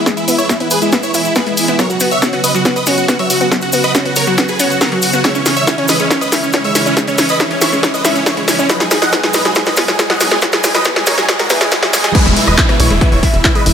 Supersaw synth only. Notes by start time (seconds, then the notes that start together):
0.17 E4
0.28 E4
0.38 E4 C#5
0.49 E4
0.60 E4
0.71 G#4 B4
0.82 E4
0.92 E4
1.03 E4 C#5
1.14 E4
1.25 E4
1.36 G#4 B4
1.46 E4
1.57 E4
1.68 E4
1.79 A#4 C#5
1.90 F#4
2.01 F#4
2.11 C#5 E5
2.22 F#4
2.33 F#4
2.44 B4 D#5
2.54 F#4
2.65 F#4
2.76 B4 D#5
2.87 F#4
2.98 F#4
3.08 F#4
3.19 C#5 E5
3.30 F#4
3.41 F#4
3.62 F#4
3.73 F#4
3.84 B4 D#5
3.95 F#4
4.06 F#4
4.16 A#4 C#5
4.27 F#4
4.38 F#4
4.49 G#4 B4
4.60 F#4
4.70 F#4
4.81 F#4 A#4
4.92 F#4
5.03 F#4
5.14 F#4
5.24 E4 C#5
5.35 C#4
5.46 C#4
5.56 C#5 E5
5.67 C#4
5.78 C#4
5.89 B4 D#5
6.00 C#4
6.11 C#4
6.21 B4 D#5
6.32 C#4
6.43 C#4
6.54 C#4
6.65 C#5 E5
6.76 C#4
6.86 C#4
7.08 C#4
7.19 C#4
7.30 B4 D#5
7.40 C#4
7.51 C#4
7.62 E4 C#5
7.73 C#4
7.83 C#4
7.94 B4 D#5
8.05 C#4
8.16 C#4
8.26 E4 C#5
8.37 C#4
8.48 C#4
8.59 C#4
8.69 B4 D#5
8.80 G#4
8.91 G#4
9.02 D#5 F#5
9.13 G#4
9.23 G#4
9.34 B4 D#5
9.45 G#4
9.56 G#4
9.67 B4 D#5
9.77 G#4
9.88 G#4
9.99 G#4
10.10 D#5 F#5
10.21 G#4
10.31 G#4
10.53 G#4
10.64 G#4
10.75 B4 D#5
10.86 G#4
10.96 G#4
11.07 A#4 C#5
11.18 G#4
11.29 G#4
11.39 F#4 A#4
11.50 G#4
11.61 G#4
11.71 B3 G#4
11.83 G#4
11.93 G#4
12.04 G#4
12.15 G#4 B4
12.26 E4
12.37 E4
12.48 B4 D#5
12.58 E4
12.69 E4
12.80 E4 C#5
12.91 E4
13.02 E4
13.12 E4 C#5
13.23 E4
13.34 E4
13.45 E4
13.55 B4 D#5
13.66 E4